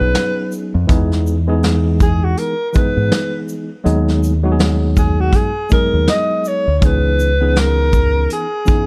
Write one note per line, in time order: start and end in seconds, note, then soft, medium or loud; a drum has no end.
0.00 0.13 B1 medium
0.00 0.72 F#3 medium
0.00 0.72 B3 medium
0.00 0.72 C#4 medium
0.00 0.72 D#4 medium
0.00 0.72 G#4 medium
0.00 0.52 B4 loud
0.15 snare loud
0.15 closed hi-hat medium
0.52 shaker soft
0.75 0.87 F2 medium
0.87 2.33 E2 loud
0.87 1.35 E3 medium
0.87 1.36 G#3 medium
0.87 1.36 B3 medium
0.87 1.36 D#4 medium
0.87 1.36 G#4 loud
0.87 kick loud
0.87 closed hi-hat medium
1.12 snare soft
1.27 shaker soft
1.47 2.53 E3 medium
1.47 2.53 G#3 medium
1.47 2.53 B3 medium
1.47 2.53 D#4 medium
1.47 2.54 G#4 loud
1.63 snare loud
1.63 closed hi-hat medium
2.00 2.26 G#4 medium
2.00 kick loud
2.00 shaker medium
2.24 2.40 F#4 medium
2.37 2.70 A#4 loud
2.37 closed hi-hat loud
2.70 3.68 E3 medium
2.70 3.68 G#3 medium
2.70 3.68 B3 medium
2.70 2.77 A#4 medium
2.70 closed hi-hat soft
2.70 shaker medium
2.75 3.69 D#4 medium
2.75 3.69 G#4 medium
2.75 3.49 B4 medium
2.75 kick loud
2.97 3.10 G#2 medium
3.11 snare loud
3.11 closed hi-hat medium
3.49 shaker soft
3.84 5.30 D#2 loud
3.84 4.32 F#3 medium
3.84 4.32 G#3 medium
3.84 4.32 B3 medium
3.84 4.33 D#4 medium
3.84 4.33 G#4 loud
3.84 closed hi-hat medium
4.08 snare soft
4.23 closed hi-hat soft
4.23 shaker medium
4.43 5.49 F#3 medium
4.43 5.49 G#3 medium
4.43 5.49 B3 medium
4.43 5.50 D#4 medium
4.43 4.50 F#4 medium
4.52 5.53 G#4 loud
4.59 snare loud
4.59 closed hi-hat medium
4.97 5.22 G#4 medium
4.97 kick medium
4.97 shaker medium
5.20 5.37 F#4 medium
5.33 5.72 G#4 medium
5.33 kick medium
5.33 closed hi-hat loud
5.70 6.64 F#3 medium
5.70 6.65 G#3 medium
5.70 6.65 B3 medium
5.70 6.65 D#4 medium
5.70 6.65 G#4 medium
5.70 6.06 A#4 medium
5.70 kick loud
5.70 shaker soft
5.94 6.06 D#2 medium
6.07 6.49 D#5 loud
6.07 snare loud
6.07 closed hi-hat medium
6.45 6.79 C#5 loud
6.45 shaker medium
6.67 6.80 D2 medium
6.79 8.26 C#2 loud
6.79 7.28 E3 medium
6.79 7.28 B3 medium
6.79 7.29 C#4 medium
6.79 7.29 D#4 medium
6.79 6.87 C#5 medium
6.79 kick loud
6.79 closed hi-hat medium
6.83 7.29 G#4 medium
6.83 7.61 B4 loud
7.20 closed hi-hat soft
7.20 shaker soft
7.40 8.45 E3 medium
7.40 8.46 B3 medium
7.40 8.46 C#4 medium
7.40 8.46 D#4 medium
7.40 8.47 G#4 medium
7.55 snare loud
7.55 closed hi-hat medium
7.59 8.32 A#4 loud
7.93 kick medium
7.93 shaker medium
8.30 8.87 G#4 medium
8.30 closed hi-hat medium
8.66 8.87 E3 medium
8.66 8.87 B3 medium
8.66 8.87 C#4 medium
8.66 8.87 D#4 medium
8.66 8.87 G#4 medium
8.66 kick medium
8.66 shaker medium